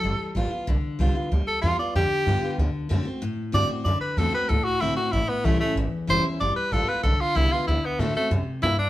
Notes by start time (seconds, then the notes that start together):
Already playing: A4
0.03 G1 G3
0.20 muted upright bass stroke
0.35 A1 G3 B3 F4
0.51 B3 F4, muted upright bass stroke
0.67 B1 D3
0.82 muted upright bass stroke
0.99 C2 G3 B3 F4
1.14 B3 F4, muted upright bass stroke
1.32 D2 G3
1.47 A4, muted upright bass stroke
1.62 E2 G3 B3 F4
1.79 B3 F4 D5, muted upright bass stroke
1.95 F2 D3 G4
2.10 muted upright bass stroke
2.26 G2 G3 B3 F4
2.42 B3 F4, muted upright bass stroke
2.58 D2 D3
2.75 muted upright bass stroke
2.89 F#2 D3 A3 C4 F#4
3.05 C4 F#4, muted upright bass stroke
3.22 A2
3.38 muted upright bass stroke
3.52 G2 D3 A3 C4 F#4 D5
3.69 C4 F#4, muted upright bass stroke
3.85 F#2 D3 D5
4.01 B4, muted upright bass stroke
4.17 E2 D3 A3 C4 F#4 A4
4.33 C4 F#4 B4, muted upright bass stroke
4.49 D2 A2 A4
4.64 F#4, muted upright bass stroke
4.80 C2 D3 A3 C4 E4 F#4
4.96 C4 F#4, muted upright bass stroke
5.12 A1 A2 E4
5.28 B3, muted upright bass stroke
5.44 B1 E3 G3 A3 C#4 E4
5.60 A3 C#4 E4, muted upright bass stroke
5.75 A1 E2
5.92 muted upright bass stroke
6.07 F#1 E3 G3 C#4 E4 C5
6.23 C#4 E4, muted upright bass stroke
6.40 G1 G3 D5
6.56 B4, muted upright bass stroke
6.72 A1 G3 B3 F4 A4
6.87 B3 F4 B4, muted upright bass stroke
7.03 B1 D3 A4
7.19 F4, muted upright bass stroke
7.35 C2 G3 B3 E4 F4
7.51 B3 F4, muted upright bass stroke
7.67 D2 D3 E4
7.83 B3, muted upright bass stroke
7.99 A2 D3 A3 C4 F#4
8.15 A3 C4 F#4, muted upright bass stroke
8.31 F#2 C3
8.47 muted upright bass stroke
8.62 G2 A#2 E4
8.78 D4, muted upright bass stroke